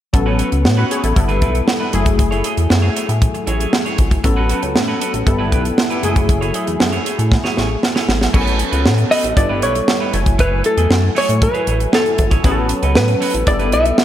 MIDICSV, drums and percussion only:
0, 0, Header, 1, 2, 480
1, 0, Start_track
1, 0, Key_signature, 3, "minor"
1, 0, Tempo, 512821
1, 127, Time_signature, 4, 2, 24, 8
1, 13149, End_track
2, 0, Start_track
2, 0, Title_t, "Drums"
2, 129, Note_on_c, 9, 36, 100
2, 130, Note_on_c, 9, 42, 85
2, 222, Note_off_c, 9, 36, 0
2, 223, Note_off_c, 9, 42, 0
2, 365, Note_on_c, 9, 42, 71
2, 458, Note_off_c, 9, 42, 0
2, 488, Note_on_c, 9, 42, 42
2, 581, Note_off_c, 9, 42, 0
2, 610, Note_on_c, 9, 38, 99
2, 703, Note_off_c, 9, 38, 0
2, 853, Note_on_c, 9, 42, 81
2, 947, Note_off_c, 9, 42, 0
2, 970, Note_on_c, 9, 42, 54
2, 1064, Note_off_c, 9, 42, 0
2, 1089, Note_on_c, 9, 36, 105
2, 1090, Note_on_c, 9, 42, 87
2, 1183, Note_off_c, 9, 36, 0
2, 1183, Note_off_c, 9, 42, 0
2, 1205, Note_on_c, 9, 42, 34
2, 1299, Note_off_c, 9, 42, 0
2, 1326, Note_on_c, 9, 42, 58
2, 1329, Note_on_c, 9, 36, 80
2, 1420, Note_off_c, 9, 42, 0
2, 1423, Note_off_c, 9, 36, 0
2, 1449, Note_on_c, 9, 42, 46
2, 1543, Note_off_c, 9, 42, 0
2, 1569, Note_on_c, 9, 38, 105
2, 1662, Note_off_c, 9, 38, 0
2, 1807, Note_on_c, 9, 42, 71
2, 1901, Note_off_c, 9, 42, 0
2, 1926, Note_on_c, 9, 42, 57
2, 1929, Note_on_c, 9, 36, 86
2, 2020, Note_off_c, 9, 42, 0
2, 2023, Note_off_c, 9, 36, 0
2, 2049, Note_on_c, 9, 42, 85
2, 2050, Note_on_c, 9, 36, 98
2, 2143, Note_off_c, 9, 36, 0
2, 2143, Note_off_c, 9, 42, 0
2, 2172, Note_on_c, 9, 42, 33
2, 2266, Note_off_c, 9, 42, 0
2, 2286, Note_on_c, 9, 42, 76
2, 2379, Note_off_c, 9, 42, 0
2, 2409, Note_on_c, 9, 42, 44
2, 2503, Note_off_c, 9, 42, 0
2, 2529, Note_on_c, 9, 38, 100
2, 2623, Note_off_c, 9, 38, 0
2, 2775, Note_on_c, 9, 42, 84
2, 2868, Note_off_c, 9, 42, 0
2, 2893, Note_on_c, 9, 42, 52
2, 2987, Note_off_c, 9, 42, 0
2, 3012, Note_on_c, 9, 36, 107
2, 3012, Note_on_c, 9, 42, 90
2, 3105, Note_off_c, 9, 36, 0
2, 3105, Note_off_c, 9, 42, 0
2, 3131, Note_on_c, 9, 42, 34
2, 3225, Note_off_c, 9, 42, 0
2, 3250, Note_on_c, 9, 42, 55
2, 3343, Note_off_c, 9, 42, 0
2, 3374, Note_on_c, 9, 42, 45
2, 3467, Note_off_c, 9, 42, 0
2, 3491, Note_on_c, 9, 38, 105
2, 3585, Note_off_c, 9, 38, 0
2, 3612, Note_on_c, 9, 42, 32
2, 3706, Note_off_c, 9, 42, 0
2, 3728, Note_on_c, 9, 42, 69
2, 3732, Note_on_c, 9, 36, 85
2, 3822, Note_off_c, 9, 42, 0
2, 3825, Note_off_c, 9, 36, 0
2, 3849, Note_on_c, 9, 42, 53
2, 3850, Note_on_c, 9, 36, 84
2, 3942, Note_off_c, 9, 42, 0
2, 3944, Note_off_c, 9, 36, 0
2, 3969, Note_on_c, 9, 42, 83
2, 3970, Note_on_c, 9, 36, 98
2, 4063, Note_off_c, 9, 42, 0
2, 4064, Note_off_c, 9, 36, 0
2, 4206, Note_on_c, 9, 42, 75
2, 4300, Note_off_c, 9, 42, 0
2, 4329, Note_on_c, 9, 42, 44
2, 4423, Note_off_c, 9, 42, 0
2, 4451, Note_on_c, 9, 38, 103
2, 4545, Note_off_c, 9, 38, 0
2, 4693, Note_on_c, 9, 42, 87
2, 4787, Note_off_c, 9, 42, 0
2, 4810, Note_on_c, 9, 42, 52
2, 4904, Note_off_c, 9, 42, 0
2, 4930, Note_on_c, 9, 36, 105
2, 4931, Note_on_c, 9, 42, 88
2, 5023, Note_off_c, 9, 36, 0
2, 5024, Note_off_c, 9, 42, 0
2, 5170, Note_on_c, 9, 36, 83
2, 5170, Note_on_c, 9, 42, 57
2, 5263, Note_off_c, 9, 36, 0
2, 5263, Note_off_c, 9, 42, 0
2, 5290, Note_on_c, 9, 42, 46
2, 5384, Note_off_c, 9, 42, 0
2, 5410, Note_on_c, 9, 38, 105
2, 5503, Note_off_c, 9, 38, 0
2, 5529, Note_on_c, 9, 42, 35
2, 5622, Note_off_c, 9, 42, 0
2, 5646, Note_on_c, 9, 42, 68
2, 5740, Note_off_c, 9, 42, 0
2, 5766, Note_on_c, 9, 42, 56
2, 5767, Note_on_c, 9, 36, 83
2, 5860, Note_off_c, 9, 42, 0
2, 5861, Note_off_c, 9, 36, 0
2, 5887, Note_on_c, 9, 36, 106
2, 5888, Note_on_c, 9, 42, 82
2, 5981, Note_off_c, 9, 36, 0
2, 5981, Note_off_c, 9, 42, 0
2, 6012, Note_on_c, 9, 42, 34
2, 6106, Note_off_c, 9, 42, 0
2, 6123, Note_on_c, 9, 42, 75
2, 6216, Note_off_c, 9, 42, 0
2, 6247, Note_on_c, 9, 42, 42
2, 6340, Note_off_c, 9, 42, 0
2, 6367, Note_on_c, 9, 38, 106
2, 6461, Note_off_c, 9, 38, 0
2, 6482, Note_on_c, 9, 42, 34
2, 6576, Note_off_c, 9, 42, 0
2, 6609, Note_on_c, 9, 42, 82
2, 6703, Note_off_c, 9, 42, 0
2, 6730, Note_on_c, 9, 42, 49
2, 6824, Note_off_c, 9, 42, 0
2, 6848, Note_on_c, 9, 36, 106
2, 6849, Note_on_c, 9, 38, 50
2, 6941, Note_off_c, 9, 36, 0
2, 6943, Note_off_c, 9, 38, 0
2, 6970, Note_on_c, 9, 38, 51
2, 7063, Note_off_c, 9, 38, 0
2, 7089, Note_on_c, 9, 38, 63
2, 7183, Note_off_c, 9, 38, 0
2, 7331, Note_on_c, 9, 38, 78
2, 7424, Note_off_c, 9, 38, 0
2, 7449, Note_on_c, 9, 38, 73
2, 7543, Note_off_c, 9, 38, 0
2, 7569, Note_on_c, 9, 38, 91
2, 7662, Note_off_c, 9, 38, 0
2, 7689, Note_on_c, 9, 38, 77
2, 7783, Note_off_c, 9, 38, 0
2, 7807, Note_on_c, 9, 36, 109
2, 7809, Note_on_c, 9, 49, 86
2, 7901, Note_off_c, 9, 36, 0
2, 7903, Note_off_c, 9, 49, 0
2, 7931, Note_on_c, 9, 42, 34
2, 8025, Note_off_c, 9, 42, 0
2, 8044, Note_on_c, 9, 42, 75
2, 8137, Note_off_c, 9, 42, 0
2, 8167, Note_on_c, 9, 42, 43
2, 8261, Note_off_c, 9, 42, 0
2, 8289, Note_on_c, 9, 38, 111
2, 8382, Note_off_c, 9, 38, 0
2, 8403, Note_on_c, 9, 42, 35
2, 8497, Note_off_c, 9, 42, 0
2, 8532, Note_on_c, 9, 46, 89
2, 8626, Note_off_c, 9, 46, 0
2, 8652, Note_on_c, 9, 42, 55
2, 8745, Note_off_c, 9, 42, 0
2, 8768, Note_on_c, 9, 36, 112
2, 8770, Note_on_c, 9, 42, 92
2, 8862, Note_off_c, 9, 36, 0
2, 8864, Note_off_c, 9, 42, 0
2, 9007, Note_on_c, 9, 42, 60
2, 9101, Note_off_c, 9, 42, 0
2, 9129, Note_on_c, 9, 42, 46
2, 9223, Note_off_c, 9, 42, 0
2, 9248, Note_on_c, 9, 38, 111
2, 9341, Note_off_c, 9, 38, 0
2, 9486, Note_on_c, 9, 42, 72
2, 9580, Note_off_c, 9, 42, 0
2, 9606, Note_on_c, 9, 36, 85
2, 9606, Note_on_c, 9, 42, 56
2, 9699, Note_off_c, 9, 42, 0
2, 9700, Note_off_c, 9, 36, 0
2, 9726, Note_on_c, 9, 36, 104
2, 9726, Note_on_c, 9, 42, 89
2, 9819, Note_off_c, 9, 42, 0
2, 9820, Note_off_c, 9, 36, 0
2, 9961, Note_on_c, 9, 42, 74
2, 10054, Note_off_c, 9, 42, 0
2, 10085, Note_on_c, 9, 42, 45
2, 10179, Note_off_c, 9, 42, 0
2, 10208, Note_on_c, 9, 38, 105
2, 10301, Note_off_c, 9, 38, 0
2, 10449, Note_on_c, 9, 46, 83
2, 10543, Note_off_c, 9, 46, 0
2, 10570, Note_on_c, 9, 42, 56
2, 10664, Note_off_c, 9, 42, 0
2, 10688, Note_on_c, 9, 36, 110
2, 10688, Note_on_c, 9, 42, 94
2, 10781, Note_off_c, 9, 36, 0
2, 10782, Note_off_c, 9, 42, 0
2, 10806, Note_on_c, 9, 42, 34
2, 10899, Note_off_c, 9, 42, 0
2, 10924, Note_on_c, 9, 42, 59
2, 11018, Note_off_c, 9, 42, 0
2, 11048, Note_on_c, 9, 42, 46
2, 11142, Note_off_c, 9, 42, 0
2, 11167, Note_on_c, 9, 38, 110
2, 11260, Note_off_c, 9, 38, 0
2, 11287, Note_on_c, 9, 42, 34
2, 11380, Note_off_c, 9, 42, 0
2, 11403, Note_on_c, 9, 42, 67
2, 11408, Note_on_c, 9, 36, 88
2, 11497, Note_off_c, 9, 42, 0
2, 11502, Note_off_c, 9, 36, 0
2, 11524, Note_on_c, 9, 42, 55
2, 11526, Note_on_c, 9, 36, 91
2, 11618, Note_off_c, 9, 42, 0
2, 11620, Note_off_c, 9, 36, 0
2, 11645, Note_on_c, 9, 42, 85
2, 11646, Note_on_c, 9, 36, 104
2, 11738, Note_off_c, 9, 42, 0
2, 11740, Note_off_c, 9, 36, 0
2, 11879, Note_on_c, 9, 42, 78
2, 11973, Note_off_c, 9, 42, 0
2, 12005, Note_on_c, 9, 42, 43
2, 12099, Note_off_c, 9, 42, 0
2, 12125, Note_on_c, 9, 38, 109
2, 12219, Note_off_c, 9, 38, 0
2, 12241, Note_on_c, 9, 42, 34
2, 12335, Note_off_c, 9, 42, 0
2, 12372, Note_on_c, 9, 46, 89
2, 12465, Note_off_c, 9, 46, 0
2, 12489, Note_on_c, 9, 42, 55
2, 12583, Note_off_c, 9, 42, 0
2, 12606, Note_on_c, 9, 42, 88
2, 12608, Note_on_c, 9, 36, 111
2, 12700, Note_off_c, 9, 42, 0
2, 12701, Note_off_c, 9, 36, 0
2, 12724, Note_on_c, 9, 42, 35
2, 12818, Note_off_c, 9, 42, 0
2, 12845, Note_on_c, 9, 42, 62
2, 12939, Note_off_c, 9, 42, 0
2, 12968, Note_on_c, 9, 42, 46
2, 13061, Note_off_c, 9, 42, 0
2, 13086, Note_on_c, 9, 38, 108
2, 13149, Note_off_c, 9, 38, 0
2, 13149, End_track
0, 0, End_of_file